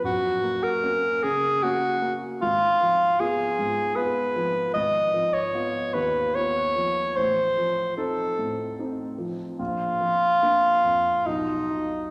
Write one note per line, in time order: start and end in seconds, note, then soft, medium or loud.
0.04 2.37 F#2 soft
0.04 0.65 F#4 medium
0.44 0.82 A#3 soft
0.63 1.25 A#4 medium
0.83 1.19 A#3 soft
0.83 1.20 C#4 soft
1.23 1.87 C#3 soft
1.23 1.64 G#4 medium
1.63 1.99 A#3 soft
1.63 1.99 C#4 soft
1.63 2.14 F#4 medium
2.02 2.41 A#3 soft
2.41 4.70 G#1 soft
2.41 3.21 F4 medium
2.81 3.43 F3 soft
3.20 3.54 B3 soft
3.20 3.55 F4 soft
3.20 3.97 G#4 medium
3.59 4.20 G#2 soft
3.96 4.31 B3 soft
3.96 4.31 F4 soft
3.96 4.73 B4 medium
4.36 4.74 F3 soft
4.74 7.13 G#1 medium
4.74 5.35 D#5 medium
5.14 5.78 F3 soft
5.33 5.96 C#5 medium
5.54 5.90 B3 soft
5.54 5.91 F4 soft
5.94 6.60 D#2 soft
5.94 6.37 B4 medium
6.35 6.72 B3 soft
6.35 6.72 F4 soft
6.35 7.18 C#5 medium
6.76 7.16 F3 soft
7.16 9.56 A1 soft
7.16 7.96 C5 medium
7.57 8.22 F3 soft
7.97 8.34 C4 soft
7.97 8.34 D#4 soft
7.97 8.77 A4 medium
8.39 9.03 A2 soft
8.79 9.15 C4 soft
8.79 9.15 D#4 soft
9.18 9.59 F3 soft
9.59 11.22 A#1 soft
9.59 11.28 F4 medium
10.01 10.67 F3 soft
10.43 10.80 A#3 soft
10.43 10.80 D4 soft
10.84 11.26 F2 soft
11.26 12.11 B1 soft
11.26 12.11 D#4 medium
11.71 12.11 D#4 soft